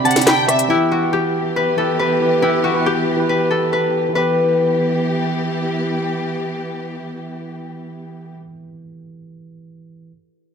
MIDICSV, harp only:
0, 0, Header, 1, 2, 480
1, 0, Start_track
1, 0, Key_signature, 1, "minor"
1, 0, Tempo, 431655
1, 778, Time_signature, 4, 2, 24, 8
1, 11730, End_track
2, 0, Start_track
2, 0, Title_t, "Harp"
2, 0, Program_c, 0, 46
2, 0, Note_on_c, 0, 76, 96
2, 0, Note_on_c, 0, 79, 95
2, 0, Note_on_c, 0, 83, 93
2, 54, Note_on_c, 0, 81, 87
2, 287, Note_off_c, 0, 83, 0
2, 292, Note_on_c, 0, 83, 84
2, 773, Note_off_c, 0, 76, 0
2, 778, Note_on_c, 0, 64, 95
2, 1017, Note_on_c, 0, 66, 78
2, 1084, Note_off_c, 0, 79, 0
2, 1255, Note_on_c, 0, 67, 90
2, 1322, Note_off_c, 0, 66, 0
2, 1665, Note_off_c, 0, 81, 0
2, 1737, Note_on_c, 0, 71, 94
2, 1795, Note_off_c, 0, 83, 0
2, 1976, Note_on_c, 0, 69, 80
2, 2212, Note_off_c, 0, 71, 0
2, 2217, Note_on_c, 0, 71, 81
2, 2690, Note_off_c, 0, 64, 0
2, 2695, Note_on_c, 0, 64, 100
2, 2933, Note_on_c, 0, 66, 88
2, 3000, Note_off_c, 0, 67, 0
2, 3183, Note_on_c, 0, 67, 94
2, 3250, Note_off_c, 0, 66, 0
2, 3657, Note_off_c, 0, 71, 0
2, 3661, Note_on_c, 0, 71, 85
2, 3894, Note_off_c, 0, 69, 0
2, 3898, Note_on_c, 0, 69, 81
2, 4140, Note_off_c, 0, 71, 0
2, 4144, Note_on_c, 0, 71, 84
2, 4614, Note_off_c, 0, 71, 0
2, 4618, Note_on_c, 0, 71, 79
2, 5599, Note_off_c, 0, 64, 0
2, 5801, Note_off_c, 0, 67, 0
2, 6340, Note_off_c, 0, 69, 0
2, 6897, Note_off_c, 0, 71, 0
2, 11730, End_track
0, 0, End_of_file